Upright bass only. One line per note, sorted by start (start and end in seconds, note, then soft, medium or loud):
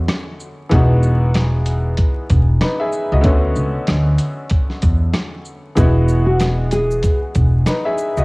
0.72 1.94 E1 loud
2.30 2.58 E1 medium
3.12 3.23 C#2 loud
3.24 3.53 D2 loud
3.56 3.73 C#2 medium
3.88 4.16 D2 medium
4.83 5.11 E2 loud
5.77 6.99 E1 loud
7.36 7.64 E1 medium
8.17 8.25 C#2 loud